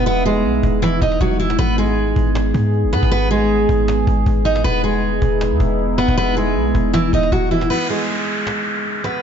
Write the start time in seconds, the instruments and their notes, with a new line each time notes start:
Already playing: 808-style bass E1, ambient pad G#3 B3 D#4 E4
0.06 steel-string acoustic guitar B3 B4
0.25 steel-string acoustic guitar G#3 G#4
0.44 808-style bass B1
0.63 808-style bass E1, cajon bass
0.82 steel-string acoustic guitar E3 E4, cajon slap
1.02 808-style bass E1, steel-string acoustic guitar D#4 D#5, cajon bass
1.08 cajon slap
1.12 cajon slap
1.14 cajon slap
1.21 808-style bass E1, steel-string acoustic guitar F#3 F#4, cajon bass
1.40 steel-string acoustic guitar E3 E4
1.50 cajon slap
1.59 808-style bass G#1, ambient pad G#3 G#4, steel-string acoustic guitar B3 B4, cajon bass
1.78 steel-string acoustic guitar G#3 G#4
1.91 cajon slap
1.97 cajon slap
2.04 cajon slap
2.10 cajon slap
2.16 808-style bass G#1, cajon bass
2.35 cajon slap
2.54 808-style bass G#2, cajon bass
2.74 cajon slap
2.84 808-style bass F#1
2.93 808-style bass G#2, steel-string acoustic guitar B3 B4, cajon slap
3.03 808-style bass G#1, cajon bass
3.11 steel-string acoustic guitar B3 B4
3.31 steel-string acoustic guitar G#3 G#4
3.69 808-style bass G#1, cajon bass
3.88 cajon slap
4.07 808-style bass G#1, cajon bass
4.20 cajon slap
4.26 808-style bass G#1, cajon bass
4.45 steel-string acoustic guitar D#4 D#5
4.56 cajon slap
4.64 808-style bass E1, ambient pad G#3 B3 D#4 E4, steel-string acoustic guitar B3 B4, cajon bass
4.84 steel-string acoustic guitar G#3 G#4
4.90 cajon slap
4.96 cajon slap
5.03 cajon slap
5.09 cajon slap
5.15 cajon slap
5.22 808-style bass E1, cajon bass
5.41 cajon slap
5.51 808-style bass E2
5.60 808-style bass E1, cajon bass
5.79 cajon slap
5.98 steel-string acoustic guitar B3 B4, cajon slap
6.08 808-style bass E1, cajon bass
6.17 steel-string acoustic guitar B3 B4
6.37 steel-string acoustic guitar G#3 G#4
6.56 808-style bass B1
6.75 808-style bass E1, cajon bass
6.93 steel-string acoustic guitar E3 E4, cajon slap
7.13 808-style bass E1, steel-string acoustic guitar D#4 D#5, cajon bass
7.19 cajon slap
7.23 cajon slap
7.26 cajon slap
7.32 808-style bass E1, steel-string acoustic guitar F#3 F#4, cajon bass
7.51 steel-string acoustic guitar E3 E4
7.61 cajon slap
7.70 steel-string acoustic guitar B3 B4, downlifter
7.89 steel-string acoustic guitar G#3 G#4, cajon slap
7.96 cajon slap
8.02 cajon slap
8.08 cajon slap
8.15 cajon slap
8.21 cajon slap
8.28 cajon slap
8.47 cajon slap
8.66 cajon slap
8.85 cajon slap
9.04 steel-string acoustic guitar B3 B4, cajon slap